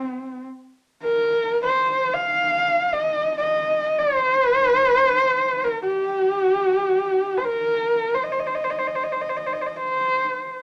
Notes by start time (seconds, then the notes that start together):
Already playing: C4
1.03 A#4
1.63 C5
2.14 F5
2.93 D#5
3.38 D#5
3.99 C5
5.64 A#4
5.82 G4
7.38 C5
7.45 A#4
8.15 C5
8.24 D#5
8.32 C5
8.40 D#5
8.47 C5
8.55 D#5
8.64 C5
8.71 D#5
8.79 C5
8.87 D#5
8.95 C5
9.04 D#5
9.12 C5
9.21 D#5
9.30 C5
9.37 D#5
9.47 C5
9.53 D#5
9.61 C5
9.67 D#5
9.77 C5